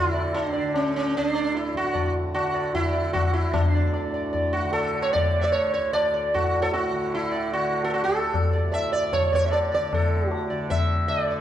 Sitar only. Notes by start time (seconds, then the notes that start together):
Already playing: E4
0.14 D5
0.34 D4
0.53 D5
0.75 C#4
0.96 C#4
1.17 C#4
1.28 D4
1.35 D5
1.57 E4
1.77 F#4
1.93 D5
2.34 F#4
2.54 D5
2.75 E4
2.93 D5
3.13 F#4
3.33 E4
3.53 D4
3.75 D5
3.94 D5
4.14 D5
4.33 D5
4.53 F#4
4.73 A4
5.02 C#5
5.13 D5
5.41 D5 E5
5.52 C#5
5.74 C#5
5.93 D5
6.14 D5
6.34 F#4
6.62 A4 C#5
6.73 F#4
7.14 E4
7.32 D5
7.53 F#4
7.84 A4
7.90 F#4 A4
8.04 A4
8.53 D5
8.72 D5 E5
8.92 D5
9.13 C#5
9.32 C#5 D5
9.46 E5
9.51 D5
9.72 D5
9.94 A4
10.29 F#4
10.50 D5
10.70 E5
11.08 D5
11.31 D5